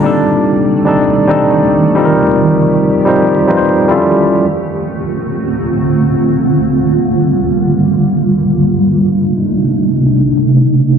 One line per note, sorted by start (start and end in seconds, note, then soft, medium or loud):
0.03 1.95 C3 medium
0.03 3.86 D#3 medium
0.03 0.70 G3 medium
0.03 1.95 A3 medium
0.03 0.70 C4 medium
0.03 0.71 D4 medium
0.03 0.71 D#4 medium
0.03 0.72 A4 medium
0.03 1.95 D5 medium
0.85 1.19 G3 medium
0.85 1.20 C4 medium
0.85 1.20 D4 medium
0.85 1.20 D#4 medium
0.85 1.21 A4 medium
1.27 1.94 G3 medium
1.27 1.95 C4 medium
1.27 1.97 D4 medium
1.27 1.96 D#4 medium
1.27 1.97 A4 medium
1.95 3.88 F3 medium
1.95 2.84 G3 medium
1.95 2.85 C4 medium
1.95 2.85 D#4 medium
1.95 2.86 F4 medium
1.95 4.42 G4 medium
1.95 2.04 A4 medium
1.95 3.87 A#4 medium
2.05 2.89 A#4 medium
3.05 3.39 G3 medium
3.05 3.40 C4 medium
3.05 3.40 D#4 medium
3.05 3.41 F4 medium
3.05 3.41 C5 medium
3.47 3.87 G3 medium
3.47 3.88 C4 medium
3.47 3.90 D#4 medium
3.47 3.89 F4 medium
3.47 3.56 B4 medium
3.57 3.94 C5 medium
3.88 4.33 G3 medium
3.88 6.62 A3 medium
3.88 3.96 C4 medium
3.88 4.34 E4 medium
3.88 4.34 F4 medium
3.88 4.35 A4 loud
3.95 4.37 C#4 medium
4.45 8.81 D3 medium
4.45 6.63 C4 medium
4.45 8.81 F4 medium
6.65 8.83 G3 medium
6.65 8.83 A#3 medium
8.85 10.99 C3 medium
8.85 10.99 A3 medium
8.85 10.99 D4 medium
8.85 10.99 D#4 medium